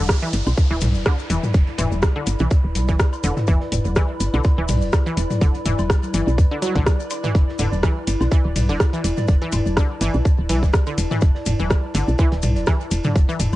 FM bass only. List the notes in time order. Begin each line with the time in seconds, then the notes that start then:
0.00 E1
0.33 G1
0.47 B1
0.71 D1
0.82 B1
0.95 E1
1.30 E1
1.54 E1
1.79 E1
1.92 E1
2.27 G1
2.40 B1
2.64 D1
2.75 B1
2.89 E1
3.24 E1
3.48 E1
3.72 E1
3.85 E1
4.20 G1
4.34 B1
4.58 D1
4.69 B1
4.82 E1
5.17 E1
5.41 E1
5.66 E1
5.79 E1
6.14 G1
6.27 B1
6.38 E2
6.76 B1
7.35 E1
7.59 E1
7.72 E1
8.08 G1
8.21 B1
8.45 D1
8.56 B1
8.69 E1
9.04 E1
9.28 E1
9.53 E1
9.66 E1
10.01 G1
10.14 B1
10.39 D1
10.49 B1
10.63 E1
10.98 E1
11.22 E1
11.46 E1
11.60 E1
11.95 G1
12.08 B1
12.32 D1
12.43 B1
12.56 E1
12.91 E1
13.16 E1
13.40 E1